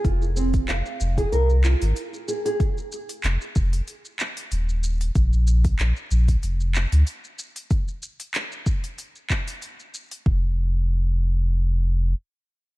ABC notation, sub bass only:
X:1
M:4/4
L:1/16
Q:"Swing 16ths" 1/4=94
K:Fm
V:1 name="Sub bass" clef=bass
F,,,4 F,,, z F,,,2 C,,3 A,,, z4 | z4 F,,, z F,,,2 z4 E,,,4 | B,,,4 B,,, z B,,,2 F,,,3 =D,, z4 | z16 |
F,,,12 z4 |]